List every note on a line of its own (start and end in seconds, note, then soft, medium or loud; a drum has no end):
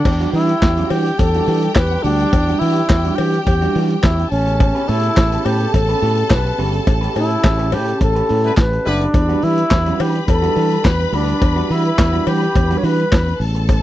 0.00 0.30 D4 loud
0.00 4.27 G4 medium
0.00 4.27 G5 loud
0.05 0.25 E2 loud
0.05 4.28 E3 medium
0.05 4.28 G3 medium
0.05 2.31 D4 medium
0.05 4.28 G4 medium
0.05 muted clean electric guitar stroke soft
0.05 kick loud
0.05 crash loud
0.05 cowbell medium
0.20 0.33 G3 medium
0.20 0.34 D4 medium
0.20 0.35 F#4 medium
0.20 closed hi-hat soft
0.33 0.53 E3 medium
0.33 0.50 G3 medium
0.33 0.49 D4 medium
0.33 0.92 E4 loud
0.33 0.49 G4 medium
0.33 open hi-hat medium
0.49 muted clean electric guitar stroke medium
0.49 closed hi-hat medium
0.62 0.82 E2 loud
0.62 muted clean electric guitar stroke soft
0.62 kick loud
0.62 snare loud
0.62 clap medium
0.62 closed hi-hat medium
0.62 cowbell medium
0.77 0.90 G3 medium
0.77 0.90 D4 medium
0.77 0.91 F#4 medium
0.77 closed hi-hat soft
0.90 1.10 E3 loud
0.90 1.07 G3 medium
0.90 1.07 D4 medium
0.90 1.05 F#4 medium
0.90 1.20 G4 medium
0.90 open hi-hat medium
0.90 cowbell medium
1.06 muted clean electric guitar stroke soft
1.06 closed hi-hat soft
1.19 1.39 E2 loud
1.19 1.75 A4 loud
1.19 muted clean electric guitar stroke soft
1.19 kick loud
1.19 closed hi-hat medium
1.19 cowbell medium
1.34 1.46 G3 soft
1.34 1.47 D4 medium
1.34 1.47 F#4 medium
1.34 closed hi-hat soft
1.47 1.67 E3 loud
1.47 1.68 G3 medium
1.47 1.62 D4 loud
1.47 1.61 F#4 loud
1.47 open hi-hat medium
1.62 muted clean electric guitar stroke soft
1.62 closed hi-hat medium
1.75 1.95 E2 medium
1.75 2.04 B4 loud
1.75 muted clean electric guitar stroke soft
1.75 kick loud
1.75 snare loud
1.75 clap medium
1.75 closed hi-hat medium
1.75 cowbell loud
1.91 muted clean electric guitar stroke medium
1.91 closed hi-hat soft
2.03 2.24 D2 loud
2.03 2.25 G3 medium
2.03 2.60 D4 loud
2.03 2.20 D4 medium
2.03 2.19 F#4 medium
2.03 open hi-hat medium
2.19 muted clean electric guitar stroke soft
2.19 closed hi-hat soft
2.33 2.52 E2 loud
2.33 4.31 C#4 medium
2.33 muted clean electric guitar stroke soft
2.33 kick loud
2.33 closed hi-hat medium
2.33 cowbell medium
2.48 2.60 G3 medium
2.48 2.61 D4 medium
2.48 2.61 F#4 medium
2.48 closed hi-hat soft
2.59 2.81 E3 loud
2.59 2.77 G3 medium
2.59 2.77 D4 medium
2.59 3.17 E4 loud
2.59 2.76 F#4 medium
2.59 open hi-hat medium
2.76 muted clean electric guitar stroke medium
2.76 closed hi-hat medium
2.89 3.09 E2 loud
2.89 muted clean electric guitar stroke soft
2.89 kick loud
2.89 snare loud
2.89 clap loud
2.89 closed hi-hat medium
2.89 cowbell medium
3.05 3.17 G3 medium
3.05 3.18 D4 medium
3.05 3.19 F#4 medium
3.05 closed hi-hat soft
3.15 3.38 E3 loud
3.15 3.34 G3 medium
3.15 3.33 D4 medium
3.15 3.44 G4 loud
3.15 open hi-hat medium
3.15 cowbell medium
3.20 3.32 F#4 medium
3.33 muted clean electric guitar stroke medium
3.33 closed hi-hat soft
3.45 3.66 E2 loud
3.45 3.79 G4 loud
3.45 muted clean electric guitar stroke soft
3.45 kick loud
3.45 closed hi-hat medium
3.45 cowbell medium
3.61 3.74 G3 medium
3.61 3.74 D4 medium
3.61 3.75 F#4 medium
3.61 closed hi-hat soft
3.75 3.95 E3 loud
3.75 3.95 G3 medium
3.75 3.90 D4 loud
3.75 3.89 F#4 medium
3.75 open hi-hat medium
3.90 muted clean electric guitar stroke soft
3.90 closed hi-hat soft
4.02 4.23 E2 medium
4.02 4.29 E4 medium
4.02 muted clean electric guitar stroke soft
4.02 kick loud
4.02 snare loud
4.02 clap medium
4.02 closed hi-hat medium
4.02 cowbell medium
4.19 muted clean electric guitar stroke medium
4.19 closed hi-hat soft
4.31 4.71 A1 loud
4.31 9.11 C#3 medium
4.31 9.11 A3 medium
4.31 6.57 B3 medium
4.31 4.90 C#4 loud
4.31 9.11 G4 medium
4.31 8.82 A4 medium
4.31 8.82 A5 medium
4.31 open hi-hat medium
4.47 muted clean electric guitar stroke soft
4.47 closed hi-hat soft
4.60 muted clean electric guitar stroke soft
4.60 kick loud
4.60 closed hi-hat medium
4.60 cowbell medium
4.75 4.87 C#4 medium
4.75 4.88 G4 medium
4.75 4.89 B4 medium
4.75 closed hi-hat soft
4.88 5.08 A2 loud
4.88 5.05 C#4 medium
4.88 5.46 E4 loud
4.88 5.03 G4 medium
4.88 5.03 C#5 medium
4.88 open hi-hat medium
5.03 muted clean electric guitar stroke medium
5.03 closed hi-hat medium
5.17 5.37 A1 loud
5.17 muted clean electric guitar stroke soft
5.17 kick loud
5.17 snare loud
5.17 clap medium
5.17 closed hi-hat medium
5.17 cowbell medium
5.32 5.44 C#4 medium
5.32 5.45 G4 medium
5.32 5.46 B4 medium
5.32 closed hi-hat medium
5.45 5.65 A2 loud
5.45 5.62 C#4 medium
5.45 5.74 G4 loud
5.45 5.60 G4 medium
5.45 5.59 B4 medium
5.45 open hi-hat medium
5.45 cowbell loud
5.60 muted clean electric guitar stroke medium
5.60 closed hi-hat soft
5.72 5.93 A1 loud
5.72 6.33 A4 loud
5.72 muted clean electric guitar stroke soft
5.72 kick loud
5.72 closed hi-hat medium
5.72 cowbell medium
5.89 6.01 C#4 medium
5.89 6.01 G4 medium
5.89 6.02 B4 medium
5.89 closed hi-hat soft
6.02 6.22 A2 loud
6.02 6.22 C#4 medium
6.02 6.16 G4 medium
6.02 6.16 B4 medium
6.02 open hi-hat medium
6.17 muted clean electric guitar stroke soft
6.17 closed hi-hat soft
6.30 6.50 B1 loud
6.30 6.59 B4 loud
6.30 muted clean electric guitar stroke soft
6.30 kick loud
6.30 snare loud
6.30 clap medium
6.30 closed hi-hat medium
6.30 cowbell medium
6.45 muted clean electric guitar stroke medium
6.45 closed hi-hat soft
6.58 6.78 G1 loud
6.58 6.79 C#4 medium
6.58 9.12 C#4 medium
6.58 6.73 G4 loud
6.58 6.72 B4 loud
6.58 open hi-hat medium
6.73 muted clean electric guitar stroke medium
6.73 closed hi-hat soft
6.87 7.07 A1 loud
6.87 muted clean electric guitar stroke soft
6.87 kick loud
6.87 closed hi-hat medium
6.87 cowbell medium
7.01 7.13 C#4 medium
7.01 7.14 G4 medium
7.01 7.15 B4 medium
7.01 closed hi-hat soft
7.15 7.35 A2 medium
7.15 7.31 C#4 medium
7.15 7.75 E4 loud
7.15 7.29 G4 medium
7.15 7.29 B4 medium
7.15 open hi-hat medium
7.15 cowbell medium
7.30 muted clean electric guitar stroke soft
7.30 closed hi-hat medium
7.44 7.74 A1 loud
7.44 muted clean electric guitar stroke soft
7.44 kick loud
7.44 snare loud
7.44 clap medium
7.44 closed hi-hat medium
7.44 cowbell medium
7.59 7.71 C#4 medium
7.59 7.72 G4 medium
7.59 7.72 B4 loud
7.59 closed hi-hat medium
7.72 7.92 A2 loud
7.72 7.88 C#4 medium
7.72 7.87 G4 medium
7.72 8.01 G4 loud
7.72 7.86 B4 medium
7.72 open hi-hat medium
7.72 cowbell medium
7.87 muted clean electric guitar stroke soft
7.87 closed hi-hat medium
8.00 8.20 A1 loud
8.00 8.54 A4 loud
8.00 muted clean electric guitar stroke soft
8.00 kick loud
8.00 closed hi-hat medium
8.00 cowbell medium
8.15 8.28 C#4 medium
8.15 8.28 G4 medium
8.15 8.29 B4 medium
8.15 closed hi-hat soft
8.29 8.49 A2 loud
8.29 8.49 C#4 medium
8.29 8.44 G4 medium
8.29 8.43 B4 medium
8.29 open hi-hat medium
8.44 8.53 G3 medium
8.44 8.53 B3 medium
8.44 8.53 E4 medium
8.44 8.53 B4 medium
8.44 muted clean electric guitar stroke soft
8.44 closed hi-hat soft
8.57 8.77 A1 medium
8.57 8.89 B4 loud
8.57 muted clean electric guitar stroke soft
8.57 kick loud
8.57 snare loud
8.57 clap medium
8.57 closed hi-hat medium
8.57 cowbell medium
8.73 muted clean electric guitar stroke medium
8.73 closed hi-hat soft
8.85 9.06 F#1 loud
8.85 9.04 G3 loud
8.85 9.04 B3 loud
8.85 9.45 D4 loud
8.85 9.04 E4 loud
8.85 9.04 B4 loud
8.85 open hi-hat medium
9.01 muted clean electric guitar stroke soft
9.01 closed hi-hat soft
9.13 9.34 E2 loud
9.13 13.37 E3 medium
9.13 13.37 G3 medium
9.13 13.36 D4 medium
9.13 13.36 G4 medium
9.13 13.37 B4 medium
9.13 13.36 B5 loud
9.13 muted clean electric guitar stroke soft
9.13 kick loud
9.13 closed hi-hat medium
9.13 cowbell medium
9.29 9.41 G3 medium
9.29 9.42 D4 medium
9.29 9.43 F#4 medium
9.29 closed hi-hat soft
9.42 9.62 E3 medium
9.42 9.59 G3 medium
9.42 9.58 D4 medium
9.42 10.02 E4 loud
9.42 9.58 G4 medium
9.42 open hi-hat medium
9.58 muted clean electric guitar stroke soft
9.58 closed hi-hat medium
9.71 9.91 E2 loud
9.71 muted clean electric guitar stroke soft
9.71 kick loud
9.71 snare loud
9.71 clap loud
9.71 closed hi-hat medium
9.71 cowbell medium
9.86 9.99 G3 medium
9.86 9.99 D4 medium
9.86 9.99 F#4 medium
9.86 closed hi-hat medium
10.00 10.19 E3 loud
10.00 10.16 G3 medium
10.00 10.15 D4 medium
10.00 10.14 F#4 medium
10.00 10.27 G4 loud
10.00 open hi-hat medium
10.00 cowbell loud
10.15 muted clean electric guitar stroke soft
10.15 closed hi-hat soft
10.28 10.48 E2 loud
10.28 10.88 A4 loud
10.28 muted clean electric guitar stroke soft
10.28 kick loud
10.28 closed hi-hat medium
10.28 cowbell medium
10.42 10.54 G3 medium
10.42 10.55 D4 medium
10.42 10.55 F#4 medium
10.42 closed hi-hat soft
10.55 10.76 E3 loud
10.55 10.76 G3 medium
10.55 10.71 D4 medium
10.55 10.69 F#4 medium
10.55 open hi-hat medium
10.71 muted clean electric guitar stroke medium
10.71 closed hi-hat soft
10.85 11.04 E2 loud
10.85 11.16 B4 loud
10.85 muted clean electric guitar stroke soft
10.85 kick loud
10.85 snare loud
10.85 clap medium
10.85 closed hi-hat medium
10.85 cowbell medium
10.99 muted clean electric guitar stroke medium
10.99 closed hi-hat soft
11.13 11.32 D2 loud
11.13 11.33 G3 medium
11.13 11.27 D4 loud
11.13 11.73 D4 loud
11.13 11.26 F#4 loud
11.13 open hi-hat medium
11.28 muted clean electric guitar stroke soft
11.28 closed hi-hat soft
11.41 11.61 E2 loud
11.41 muted clean electric guitar stroke soft
11.41 kick loud
11.41 closed hi-hat medium
11.41 cowbell medium
11.56 11.68 G3 medium
11.56 11.69 D4 medium
11.56 11.70 F#4 medium
11.56 closed hi-hat soft
11.70 11.90 E3 loud
11.70 11.86 G3 medium
11.70 11.85 D4 medium
11.70 12.28 E4 loud
11.70 11.84 F#4 medium
11.70 open hi-hat medium
11.85 muted clean electric guitar stroke medium
11.85 closed hi-hat soft
11.98 12.18 E2 loud
11.98 muted clean electric guitar stroke soft
11.98 kick loud
11.98 snare loud
11.98 clap loud
11.98 closed hi-hat medium
11.98 cowbell medium
12.13 12.25 G3 medium
12.13 12.26 D4 medium
12.13 12.27 F#4 medium
12.13 closed hi-hat soft
12.27 12.46 E3 loud
12.27 12.43 G3 medium
12.27 12.41 D4 medium
12.27 12.40 F#4 medium
12.27 12.79 G4 loud
12.27 open hi-hat medium
12.27 cowbell medium
12.41 muted clean electric guitar stroke medium
12.41 closed hi-hat medium
12.55 12.75 E2 loud
12.55 muted clean electric guitar stroke soft
12.55 kick loud
12.55 closed hi-hat medium
12.55 cowbell medium
12.70 12.82 G3 medium
12.70 12.83 D4 medium
12.70 12.84 F#4 medium
12.70 closed hi-hat soft
12.78 12.86 C#5 medium
12.83 13.03 E3 loud
12.83 13.04 G3 medium
12.83 12.98 D4 loud
12.83 12.96 F#4 loud
12.83 13.41 B4 loud
12.83 open hi-hat medium
12.98 muted clean electric guitar stroke medium
12.98 closed hi-hat soft
13.12 13.32 E2 medium
13.12 muted clean electric guitar stroke soft
13.12 kick loud
13.12 snare loud
13.12 clap medium
13.12 closed hi-hat medium
13.12 cowbell medium
13.27 muted clean electric guitar stroke medium
13.27 closed hi-hat soft
13.40 13.79 A1 loud
13.40 13.82 C#3 medium
13.40 13.82 G3 medium
13.40 13.82 A3 medium
13.40 13.82 B3 medium
13.40 13.82 A4 medium
13.40 13.82 A5 medium
13.40 open hi-hat medium
13.55 muted clean electric guitar stroke soft
13.55 closed hi-hat soft
13.69 muted clean electric guitar stroke soft
13.69 kick loud
13.69 closed hi-hat medium
13.69 cowbell medium